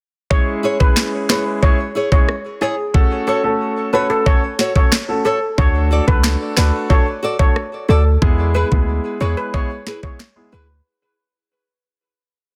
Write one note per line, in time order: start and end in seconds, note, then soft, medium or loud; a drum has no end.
0.30 0.76 G#3 medium
0.30 0.76 C#4 medium
0.30 0.76 E4 medium
0.30 0.76 G#4 medium
0.30 0.59 C#5 loud
0.30 kick loud
0.63 0.76 E4 medium
0.63 0.77 G#4 medium
0.63 0.77 C#5 medium
0.80 1.25 G#3 medium
0.80 1.26 C#4 medium
0.80 1.26 E4 medium
0.80 1.26 G#4 medium
0.80 0.94 B4 medium
0.80 kick medium
0.97 snare loud
0.97 clap medium
1.29 1.60 G#3 medium
1.29 1.60 C#4 medium
1.29 1.42 E4 medium
1.29 1.60 E4 medium
1.29 1.60 G#4 medium
1.29 1.43 G#4 medium
1.29 1.44 B4 medium
1.29 1.43 C#5 medium
1.29 snare loud
1.29 clap medium
1.62 1.76 G#3 medium
1.62 1.76 C#4 medium
1.62 1.76 E4 medium
1.62 1.76 G#4 loud
1.62 1.77 C#5 medium
1.62 kick medium
1.95 2.08 E4 medium
1.95 2.09 G#4 medium
1.95 2.09 C#5 medium
2.12 2.26 G#3 medium
2.12 2.26 C#4 medium
2.12 2.26 E4 medium
2.12 2.26 G#4 medium
2.12 2.26 C#5 medium
2.12 kick medium
2.29 cross-stick medium
2.61 2.74 E4 medium
2.61 2.76 G#4 medium
2.61 2.74 G#4 medium
2.61 2.75 C#5 loud
2.94 3.40 A3 medium
2.94 3.40 C#4 medium
2.94 3.40 F#4 medium
2.94 3.40 A4 loud
2.94 kick loud
3.27 3.40 F#4 medium
3.27 3.42 A4 medium
3.27 3.40 A4 medium
3.27 3.41 C#5 medium
3.43 3.89 A3 medium
3.43 3.89 C#4 medium
3.43 3.89 F#4 medium
3.43 3.90 A4 medium
3.93 4.23 A3 medium
3.93 4.24 C#4 medium
3.93 4.06 F#4 medium
3.93 4.24 F#4 medium
3.93 4.24 A4 medium
3.93 4.06 A4 medium
3.93 4.08 B4 medium
3.93 4.07 C#5 medium
4.10 4.24 A4 medium
4.26 4.40 A3 medium
4.26 4.40 C#4 medium
4.26 4.40 F#4 medium
4.26 4.40 A4 loud
4.26 4.41 C#5 medium
4.26 kick medium
4.59 4.72 F#4 medium
4.59 4.72 A4 medium
4.59 4.73 C#5 medium
4.59 snare medium
4.75 4.89 A3 medium
4.75 4.89 C#4 medium
4.75 4.89 F#4 medium
4.75 4.90 A4 medium
4.75 4.90 C#5 medium
4.75 kick medium
4.92 cross-stick medium
4.92 snare loud
4.92 clap medium
5.08 5.22 A3 medium
5.08 5.22 C#4 medium
5.08 5.22 F#4 medium
5.08 5.23 A4 medium
5.25 5.38 F#4 medium
5.25 5.39 A4 medium
5.25 5.38 A4 loud
5.25 5.39 C#5 medium
5.58 6.01 D2 loud
5.58 6.04 A3 medium
5.58 6.04 D4 medium
5.58 6.04 F#4 medium
5.58 6.04 A4 loud
5.58 5.87 C#5 loud
5.58 kick loud
5.91 6.04 F#4 medium
5.91 6.04 A4 medium
5.91 6.05 D5 medium
6.07 6.36 C#2 medium
6.07 6.53 A3 medium
6.07 6.53 D4 medium
6.07 6.53 F#4 medium
6.07 6.53 A4 medium
6.07 6.22 B4 medium
6.07 kick medium
6.24 snare loud
6.24 clap medium
6.57 6.71 D2 medium
6.57 6.87 A3 medium
6.57 6.87 D4 medium
6.57 6.70 F#4 medium
6.57 6.87 F#4 medium
6.57 6.88 A4 medium
6.57 6.70 A4 medium
6.57 6.71 B4 medium
6.57 6.70 D5 medium
6.57 snare loud
6.57 clap medium
6.90 7.04 A3 medium
6.90 7.04 D4 medium
6.90 7.04 F#4 medium
6.90 7.04 A4 loud
6.90 7.04 C#5 medium
6.90 kick medium
7.23 7.35 F#4 medium
7.23 7.36 A4 medium
7.23 7.36 D5 loud
7.39 7.53 A3 medium
7.39 7.53 D4 medium
7.39 7.53 F#4 medium
7.39 7.53 A4 medium
7.39 7.54 C#5 medium
7.39 kick medium
7.56 cross-stick medium
7.88 8.17 D2 loud
7.88 8.01 F#4 medium
7.88 8.03 A4 medium
7.88 8.02 A4 medium
7.88 8.02 D5 medium
8.22 8.64 E2 loud
8.22 8.67 G#3 medium
8.22 8.67 B3 medium
8.22 8.67 E4 medium
8.22 8.68 G#4 medium
8.22 kick loud
8.54 8.67 E4 medium
8.54 8.68 G#4 medium
8.54 8.69 B4 medium
8.54 8.68 B4 loud
8.71 9.00 D2 medium
8.71 9.17 G#3 medium
8.71 9.17 B3 medium
8.71 9.17 E4 medium
8.71 9.17 G#4 medium
8.71 kick medium
9.20 9.35 E2 medium
9.20 9.51 G#3 medium
9.20 9.51 B3 medium
9.20 9.33 E4 medium
9.20 9.51 E4 medium
9.20 9.51 G#4 medium
9.20 9.34 G#4 medium
9.20 9.34 B4 medium
9.20 9.35 C#5 medium
9.37 9.52 B4 medium
9.54 9.67 G#3 medium
9.54 9.68 B3 medium
9.54 9.68 E4 medium
9.54 9.68 G#4 loud
9.54 9.68 C#5 medium
9.54 kick medium
9.86 9.99 E4 medium
9.86 10.00 G#4 medium
9.86 10.00 B4 loud
9.86 snare medium
10.03 10.17 G#3 medium
10.03 10.17 B3 medium
10.03 10.17 E4 medium
10.03 10.17 G#4 medium
10.03 10.18 C#5 medium
10.03 kick medium
10.20 cross-stick medium
10.20 snare loud
10.20 clap medium
10.36 10.50 G#3 medium
10.36 10.50 B3 medium
10.36 10.50 E4 medium
10.36 10.50 G#4 medium
10.52 10.81 D2 medium
10.52 10.65 E4 medium
10.52 10.66 G#4 medium
10.52 10.67 B4 medium
10.52 10.66 B4 loud